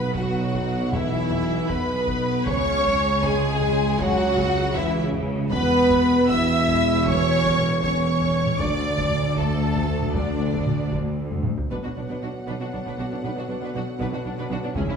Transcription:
Already playing: B1 B2 B3 B4 B5, impact
0.15 F#3 F#4 F#5, taiko
0.54 taiko
0.91 E3 E4 E5, taiko
1.31 taiko
1.69 B3 B4 B5, taiko
2.08 taiko
2.46 C#2 C#3 C#4 C#5 C#6, taiko
2.85 taiko
3.23 G#3 G#4 G#5, taiko
3.61 taiko
3.99 F#3 F#4 F#5, taiko
4.37 taiko
4.75 E3 E4 E5, taiko
5.13 taiko
5.51 E1 E2 B3 B4 B5, taiko
5.90 taiko
6.29 E4 E5 E6, taiko
6.68 taiko
7.05 C#4 C#5 C#6, taiko
7.44 taiko
7.57 taiko mid
7.82 C#4 C#5 C#6, taiko
8.21 taiko
8.46 taiko mid
8.59 D2 D4 D5 D6, taiko
8.98 taiko
9.10 taiko mid
9.36 A3 A4 A5, taiko
9.75 taiko
10.01 taiko mid
10.14 D3 D4 D5, taiko
10.53 taiko
10.66 taiko mid
10.92 taiko
11.31 taiko low-mid
11.44 taiko mid
11.57 taiko low
11.70 B1 B2 D3 F#3 B3 D4 F#4 B4 F#5, taiko
11.83 B2 D4 F#4
11.96 B1 B2 D4
12.08 B2 D4 B4
12.21 B1 B2 D4 F#4
12.47 B1 B2 D4 B4
12.60 B2 D4 F#4
12.72 B1 B2 D4
12.85 B2 D4 B4, taiko
12.98 B1 B2 D4 F#4
13.11 B2 D4
13.23 B1 B2 D4 B4
13.35 B2 D4 F#4
13.48 B1 B2 D4
13.61 B2 D4 B4
13.74 B1 B2 D4 F#4
13.99 B1 B2 D4 B4
14.11 B2 D4 F#4
14.25 B1 B2 D4
14.38 B2 D4 B4
14.50 B1 B2 D4 F#4
14.63 B2 D4
14.75 C#2 C#3 E3 C#4 E4 G#4 E5, taiko
14.88 C#3 C#4 E4

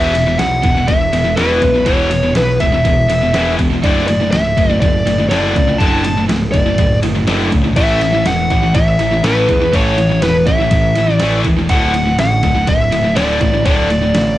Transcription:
Already playing: E1 E2 B2 E3 E5
0.15 E2 B2, ride
0.27 E2 B2
0.39 B1 E2 B2 F#5, snare, ride
0.63 E1 E2 B2, kick, ride
0.77 E2 B2
0.88 E1 E2 B2 E5, kick, ride
1.12 E1 E2 B2, ride
1.25 E2 B2
1.36 E1 E2 B2 E3 B4, snare, ride
1.61 B1 E2 B2, kick, ride
1.74 E2 B2
1.86 E1 E2 B2 E3 C#5, kick, ride
2.11 E2 B2, ride
2.23 E2 B2
2.35 B1 E2 B2 B4, snare, ride
2.60 E1 E2 B2 E5, kick, ride
2.74 E2 B2
2.85 E1 E2 B2, kick, ride
3.09 E1 E2 B2, ride
3.23 E2 B2
3.34 E1 E2 B2 E3, snare, ride
3.59 E1 E2 B2, kick, ride
3.73 E2 B2
3.83 F#1 D2 A2 D3 D5, kick, ride
4.07 D2 A2 D5, ride
4.21 D2 A2
4.31 C#1 D2 A2 E5, snare, ride
4.57 F#1 D2 A2, kick, ride
4.70 D2 A2
4.80 F#1 D2 A2 D5, kick, ride
5.06 F#1 D2 A2, ride
5.20 D2 A2
5.29 F#1 D2 A2 D3 D5, snare, ride
5.55 C#2 D2 A2, kick, ride
5.68 D2 A2
5.78 F#1 D2 A2 D3 A5, kick, ride
6.04 D2 A2, ride
6.18 D2 A2
6.29 C#1 D2 A2, snare, ride
6.52 F#1 D2 A2 D5, kick, ride
6.66 D2 A2
6.78 F#1 D2 A2, kick, ride
7.02 F#1 D2 A2, ride
7.15 D2 A2
7.27 F#1 D2 A2 D3, snare, ride
7.51 C#2 D2 A2, kick, ride
7.64 D2 A2
7.76 A1 A2 E3 A3 E5, kick, crash
8.01 A2 E3, ride
8.14 A2 E3
8.25 E1 A2 E3 F#5, snare, ride
8.50 A1 A2 E3, kick, ride
8.63 A2 E3
8.75 A1 A2 E3 E5, kick, ride
8.98 A1 A2 E3, ride
9.12 A2 E3
9.23 A1 A2 E3 A3 B4, snare, ride
9.49 E2 A2 E3, kick, ride
9.61 A2 E3
9.73 A1 A2 E3 A3 C#5, kick, ride
9.98 A2 E3, ride
10.11 A2 E3
10.22 E1 A2 E3 B4, snare, ride
10.47 A1 A2 E3 E5, kick, ride
10.61 A2 E3
10.71 A1 A2 E3, kick, ride
10.96 A1 A2 E3, ride
11.10 A2 E3 D5
11.20 A1 A2 E3 A3, snare, ride
11.45 E1 A2 E3, kick, ride
11.58 A2 E3
11.69 D1 D2 A2 D3 F#5, kick, ride
11.94 D2 A2, ride
12.06 D2 A2
12.18 A1 D2 A2 F#5, snare, ride
12.43 D1 D2 A2, kick, ride
12.55 D2 A2
12.67 D1 D2 A2 E5, kick, ride
12.92 D1 D2 A2, ride
13.04 D2 A2
13.16 D1 D2 A2 D3 D5, snare, ride
13.41 A1 D2 A2, kick, ride
13.53 D2 A2
13.65 D1 D2 A2 D3 D5, kick, ride
13.90 D2 A2, ride
14.03 D2 A2
14.14 A1 D2 A2, snare, ride

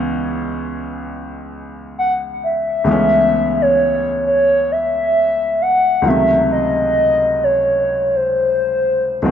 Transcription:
Already playing: C#2 E3 G#3 B3 C#4
1.99 F#5
2.44 E5
2.84 C#2 E3 G#3
2.88 A3 B3 C#4
3.62 C#5
4.26 C#5
4.72 E5
5.62 F#5
6.02 C#2 D#3 F#3
6.07 C3 A3 E5
6.53 D#5
7.44 C#5
8.16 C5
9.22 C#2 D#3 F#3 A3 C4

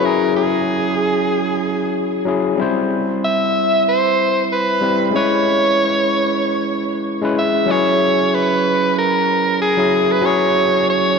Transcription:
Already playing: C#4 E4 G#4
0.00 F#3 C#4
0.05 E4 G#4 A#4
0.36 G#4
2.25 F#3 C#4 E4 G#4
2.56 G3 C4 E4
2.62 C5
3.25 E5
3.89 C5
4.52 B4
4.81 G3 C4 E4 B4
5.11 G#3 C#4 E4
5.16 B4 C#5
7.22 G#3 C#4 E4 B4
7.39 E5
7.66 F#3 C#4
7.70 E4 G#4 C#5
8.35 B4
8.98 A#4
9.62 G#4
9.77 F#3 C#4 E4 G#4
10.12 B4
10.21 F#3 C#4
10.25 E4 G#4 C#5
10.90 C#5

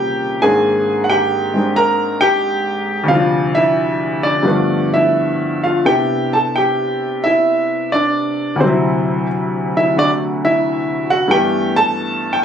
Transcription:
Already playing: D#2 A#2 C3 C#3 G3 A#3 G4 G5
0.42 G#2 D#3 A#3 C4 D4 G#4 G#5
1.04 F#5
1.10 G4 G5
1.54 G#3 C4 D4
1.76 A#4 A#5
2.21 G4 G5
3.04 D2
3.08 C3 F3 F4 F5
3.15 D4
3.55 E4 E5
4.23 D4 D5
4.43 G2 D3 F3 A3
4.47 B3 D4
4.94 E4 E5
5.64 F4 F5
5.85 C3 B3 D4 E4 G4 G5
6.33 A4 A5
6.56 G4 G5
7.24 E4 E5
7.92 D4 D5
8.56 D2
8.60 C3 F#3 C4 C5
8.67 E4
9.77 E4 E5
9.96 D3 A3 D4 F#4 D5
10.45 E4 E5
11.10 F#4 F#5
11.28 G2 E3 A3 G5
11.32 B3 G4
11.76 A4 A5
12.33 G5

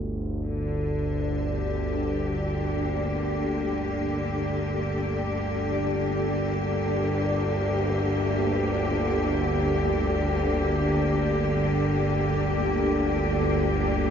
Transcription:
Already playing: G1 D2
0.44 G1 D2 D3 D4 D5
1.46 G4
2.52 A#3

